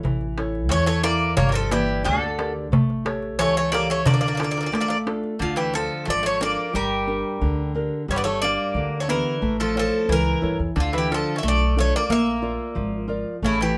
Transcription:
Already playing: E4 A4 C#5
0.03 A1 E3, darbuka dum
0.21 darbuka tek
0.38 E4 A4 C#5, darbuka tek
0.55 darbuka tek
0.69 E2 E3 A3 C#5, darbuka tek
0.86 A3 C#5, darbuka tek
1.03 A#3 E4 A4 D5 E5, darbuka tek
1.37 G1 G3 A#3 C#5, darbuka dum
1.49 G3 A#4
1.54 F3 A4, darbuka tek
1.71 E3 A#3 G4 D5, darbuka tek
1.89 darbuka tek
2.04 D2 D3 A4, darbuka tek
2.23 darbuka tek
2.39 G4 A#4 D5, darbuka tek
2.72 A1 A3, darbuka dum
2.90 darbuka tek
3.05 G4 A4 C#5, darbuka tek
3.22 darbuka tek
3.39 C#2 E3 A3 C#5, darbuka tek
3.56 A3 C#5, darbuka tek
3.72 A#3 G4 A4 C#5 D5, darbuka tek
3.90 A3 C#5
4.06 D2 D3 A3 D5, darbuka dum
4.11 A#3 D5
4.21 A#3 D5, darbuka tek
4.28 A#3 D5
4.35 A#3 D5
4.40 A#3 D4 F4 A4, darbuka tek
4.44 D5
4.51 A#3 D5
4.57 A#3 D5, darbuka tek
4.63 A#3 D5
4.72 A1 A3 A#3 D5, darbuka tek
4.81 A#3 D5
4.88 A#3 D5, darbuka tek
5.06 D4 F4 A4, darbuka tek
5.24 darbuka tek
5.39 D2 D3 F4
5.56 E3 G4
5.74 F3 D4 F4 A4
6.05 G#1 F3 A3
6.10 D5
6.23 A3 C#5
6.41 A#3 D4 F4 A4 D5
6.73 G1 G3 A#4
7.07 D4 G4 A#4
7.41 D2 D3
7.75 D4 G4 A#4
8.08 G1 G3 C#5
8.16 B3 D5
8.24 A3 C#5
8.42 A#3 D4 D5
8.74 D2 D3
9.00 A3 C#5
9.08 E3 B3 D4 G4 A#4
9.42 A1 A3
9.60 F3 A4
9.75 F3 E4 C#5
9.79 A4
10.09 C#2 E3 A#4
10.42 G2 E4 A4 C#5
10.59 E2
10.76 D2 D3
10.80 F4
10.93 E3
10.98 G4
11.10 F3 D4 F4 A4
11.14 A4
11.36 C#4 E5
11.43 B1 A3
11.48 D5
11.76 A3 D4 F4 A4 C#5
11.96 A#3 D5
12.09 A#1 A#3 E5
12.42 F4 A#4 D5
12.75 G#1 F3
13.08 F4 A#4 D5
13.42 A1 C#3 A3 E4
13.61 E3 G4

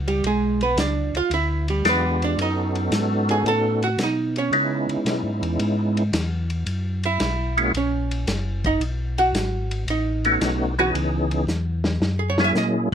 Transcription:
Already playing: C#2
0.08 G3 G4, ride
0.23 B1 G#4, ride
0.27 G#3
0.61 B3 B4, ride
0.76 C#2 D5, snare, hi-hat pedal, ride
0.80 D4
1.13 C#2 F4 F5, ride
1.30 D2 E4 E5, ride
1.68 G3 G4, ride
1.84 E2 G#3 B3 D4 F4 G4, snare, hi-hat pedal, ride
1.89 B3 B4
2.22 D4 D5, ride
2.37 F#2 B3 C#4 D#4 F#4 A4, ride
2.42 D#4 D#5
2.75 ride
2.91 G#2, snare, hi-hat pedal, ride
3.29 G#4 G#5, ride
3.44 A2, ride
3.48 A4 A5
3.82 F#4 F#5, ride
3.97 B2, snare, hi-hat pedal, ride
4.03 D#4 D#5
4.36 C#4 C#5, ride
4.52 C#3 G#3 B3 C#4 D#4 E4, ride
4.88 C#3, ride
5.05 B2, snare, hi-hat pedal, ride
5.23 G#2
5.41 E2, ride
5.59 G#2, ride
5.97 ride
6.12 E2, snare, hi-hat pedal, ride
6.50 ride
6.66 F#2, ride
7.03 E4 E5, ride
7.20 B1, snare, hi-hat pedal, ride
7.57 G#3 A#3 C#4 E4 F#4, ride
7.74 A#1 C#4 C#5, ride
8.11 ride
8.26 F#1, snare, hi-hat pedal, ride
8.64 D#4 D#5, kick, ride
8.80 B1, ride
9.18 F#4 F#5, ride
9.33 G#1, snare, hi-hat pedal, ride
9.71 ride
9.87 A1 D#4 D#5, ride
10.25 A3 B3 C#4 D#4 F#4, ride
10.41 B1, snare, hi-hat pedal, ride
10.79 E3 B3 C#4 D#4 F#4 G#4 F#5, ride
10.94 C#2, ride
11.31 ride
11.47 E2, snare, hi-hat pedal
11.84 snare
12.00 F#2, snare
12.19 G#4
12.30 C#5
12.38 F#3 A#3 C#4 E4 G#4, snare
12.44 E5
12.55 A#2 D#5, snare, hi-hat pedal

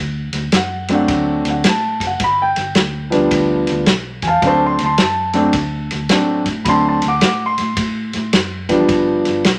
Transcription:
Already playing: D2
0.33 D2, snare, ride
0.52 F#2, snare, ride
0.56 F#5
0.88 F#3 A3 C4 D4, snare, ride
0.95 F#5
1.08 D2, kick, snare, ride
1.45 D2, snare, ride
1.50 F#5
1.64 A2, snare, ride
1.69 A5
2.00 F#1, kick, snare, ride
2.07 F#5
2.20 G1, kick, snare, ride
2.24 B5
2.42 G5
2.56 G1, snare, ride
2.75 D2, snare, ride
3.10 F3 G3 B3 D4, snare, ride
3.15 D2
3.31 D2, kick, snare, ride
3.67 D2, snare, ride
3.86 B1, snare, ride
4.22 E2 G#5, kick, snare, ride
4.27 F5 A5
4.42 D2 F#3 A3 C4 D4, kick, snare, ride
4.47 C5 A5
4.66 A5 C6
4.79 D2, snare, ride
4.84 A5 C6
4.98 F#2, snare, ride
5.02 A5
5.33 F#3 A3 C4 D4, snare, ride
5.53 D2, kick, snare, ride
5.91 D2, snare, ride
6.09 A2 F#3 A3 C4 D4, snare, ride
6.46 A2, kick, snare, ride
6.65 D2 F#3 A3 C4 D4 B5, kick, snare, ride
6.69 A5 C6
6.89 A5 C6
7.02 D2, snare, ride
7.08 F#5 D6
7.21 A2, snare, ride
7.26 F#5 D6
7.46 C6
7.58 A2, snare, ride
7.77 A2, kick, snare, ride
8.13 A2, snare, ride
8.33 F#2, snare, ride
8.69 A1 F3 G3 B3 D4, kick, snare, ride
8.89 G1, kick, snare, ride
9.25 G1, snare, ride
9.44 B1, snare, ride

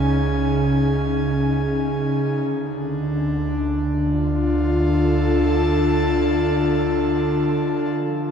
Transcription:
Already playing: C#2 C#3 C#4 D#4 G#4 G#5
2.37 D2 D3
2.54 D4
4.01 F4
4.63 A4
4.89 A5
7.98 F3
8.17 D#4

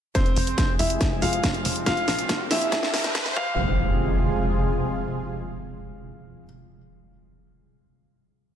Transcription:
0.15 C3 F3 G#3 C4 G#4 C5, kick, snare, closed hi-hat, riser
0.26 closed hi-hat
0.36 F1, open hi-hat
0.47 closed hi-hat
0.58 kick, snare, closed hi-hat
0.79 F1 E4 E5, open hi-hat
0.90 closed hi-hat
1.01 kick, snare, closed hi-hat
1.22 F1 F4 F5, open hi-hat
1.33 closed hi-hat
1.44 kick, snare, closed hi-hat
1.54 closed hi-hat
1.65 F1, open hi-hat
1.76 closed hi-hat
1.86 C#3 A#3 C4 F4 F5, kick, snare, closed hi-hat
1.97 closed hi-hat
2.08 A#1, snare, open hi-hat
2.19 closed hi-hat
2.29 kick, snare, closed hi-hat
2.51 A#1 E4 E5, snare, open hi-hat
2.61 closed hi-hat
2.72 kick, snare, closed hi-hat
2.83 snare
2.93 C2, snare, open hi-hat
3.04 snare, closed hi-hat
3.15 kick, snare, closed hi-hat
3.26 snare, closed hi-hat
3.36 F1 C3 F3 G#3 F4 G#4 F5, kick, impact

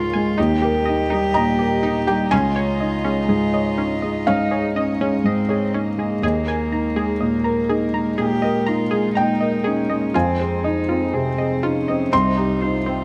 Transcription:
Already playing: C#2 G#2 G#3 F4 A#4 C#5
0.13 G#3 G#5
0.38 D#2 G3 D#4 G4 D#5
0.62 G4 A#4
0.85 D#4 D#5
1.10 G3 D#4
1.34 A#2 D#5 A#5
1.59 G4 A#4
1.83 D#4
2.07 G3 G4 G5
2.31 C#2 G#3 C#4 F4 G#5
2.56 C#5
2.80 D#4 D#5
3.04 G#3 C#4
3.29 G#2 G#4
3.54 C#5 D#5
3.78 C#4 D#4
4.02 G#3 D#5
4.27 G#2 C#4 D#4 F5
4.51 G#4 C#5
4.76 C#4 D#4 D#5
5.01 G#3 C#4
5.24 G#2 C4 D#5
5.49 G#4 C#5
5.73 A#3 C#4 D#4
5.98 G#3 G#4
6.22 D#2 G#3 D#4 G#4 A#4 D#5
6.46 A#4 G#5
6.72 D#4 A#5
6.96 G#3 G#4
7.20 A#2 D#5
7.44 A#4 A#5
7.69 D#4 G#4
7.94 G#3 A#5
8.18 A#2 G4 G#4
8.42 A#4 D#5
8.66 D#4 F4 A#5
8.91 G#3 G#4
9.15 A#2 D#4 G5 A#5
9.40 A#4 D#5
9.64 C#4 D#4 G#4
9.89 G#3 D#5
10.14 F2 C4 F4 C5 G#5
10.39 G#4 C5
10.64 D#4 D#5
10.89 C4 F4
11.13 C3 C4 G#4
11.38 G#4 D#5
11.63 C#4 D#4 F4
11.88 C4 D#5
12.11 C2 G3 C4 D#4 C6
12.38 D#4 G4
12.61 D#4 F4 C5
12.86 C4

